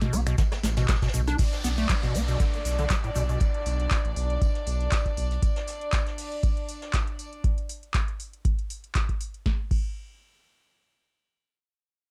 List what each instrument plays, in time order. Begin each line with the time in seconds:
0.01 analog synth bass A1, acid bass B2, snare, closed hi-hat, shaker
0.13 analog synth bass B1, acid bass B3, cross-stick, open hi-hat, tambourine, shaker
0.26 acid bass B2, finger snap, closed hi-hat, shaker
0.38 acid bass D3, kick, snare, closed hi-hat, tambourine, shaker
0.52 cross-stick, snare, closed hi-hat, tambourine, shaker
0.63 analog synth bass A1, snare, open hi-hat, tambourine, shaker
0.77 acid bass B2, snare, closed hi-hat, tambourine, shaker
0.88 kick, cross-stick, snare, clap, closed hi-hat, tambourine, shaker
0.96 snare, tambourine
1.02 acid bass B2, kick, snare, closed hi-hat, tambourine, shaker
1.08 snare, tambourine
1.14 analog synth bass B1, acid bass B2, open hi-hat, tambourine, shaker
1.27 acid bass D4, cross-stick, closed hi-hat, shaker
1.38 acid bass B2, string section D4 D5, kick, closed hi-hat, crash, tambourine, downlifter, shaker
1.52 snare, closed hi-hat, shaker
1.64 analog synth bass B1, acid bass B3, snare, open hi-hat, tambourine, shaker
1.78 acid bass A3, closed hi-hat, shaker
1.89 acid bass F#3, kick, snare, clap, closed hi-hat, tambourine, shaker
2.03 analog synth bass A1, acid bass B2, snare, closed hi-hat, shaker
2.15 analog synth bass B1, acid bass B3, open hi-hat, shaker
2.28 acid bass B2, closed hi-hat, shaker
2.40 acid bass D3, kick, closed hi-hat, tambourine, shaker
2.54 closed hi-hat, shaker
2.65 analog synth bass B1, open hi-hat, tambourine, shaker
2.78 acid bass D3, snare, closed hi-hat, shaker
2.90 acid bass F#3, kick, snare, clap, closed hi-hat, tambourine, shaker
3.04 acid bass A2, closed hi-hat, shaker
3.15 analog synth bass B1, acid bass B2, open hi-hat, tambourine, shaker
3.29 acid bass B2, closed hi-hat, shaker
3.40 kick, closed hi-hat, tambourine
3.54 closed hi-hat
3.66 analog synth bass B1, open hi-hat, tambourine
3.80 closed hi-hat
3.91 kick, snare, clap, closed hi-hat, tambourine
4.05 analog synth bass A1, closed hi-hat
4.16 analog synth bass B1, open hi-hat, tambourine
4.30 closed hi-hat
4.42 kick, closed hi-hat, tambourine
4.55 snare, closed hi-hat
4.66 analog synth bass B1, open hi-hat, tambourine
4.81 closed hi-hat
4.92 kick, snare, clap, closed hi-hat, tambourine
5.06 kick, closed hi-hat
5.17 analog synth bass B1, open hi-hat, tambourine
5.31 closed hi-hat
5.42 kick, closed hi-hat, tambourine
5.56 snare, closed hi-hat
5.67 snare, open hi-hat, tambourine
5.81 closed hi-hat
5.92 kick, snare, clap, closed hi-hat, tambourine
6.07 snare, closed hi-hat
6.18 open hi-hat
6.32 closed hi-hat
6.43 kick, closed hi-hat, tambourine
6.57 closed hi-hat
6.69 open hi-hat, tambourine
6.82 snare, closed hi-hat
6.93 kick, snare, clap, closed hi-hat, tambourine
7.07 closed hi-hat
7.19 open hi-hat, tambourine
7.33 closed hi-hat
7.44 kick, closed hi-hat
7.58 closed hi-hat
7.69 open hi-hat
7.83 closed hi-hat
7.94 kick, clap, closed hi-hat
8.08 closed hi-hat
8.20 open hi-hat
8.33 closed hi-hat
8.45 kick, closed hi-hat
8.59 closed hi-hat
8.70 open hi-hat
8.84 closed hi-hat
8.95 kick, clap, closed hi-hat
9.09 kick, closed hi-hat
9.21 open hi-hat
9.34 closed hi-hat
9.46 kick, snare
9.71 kick, crash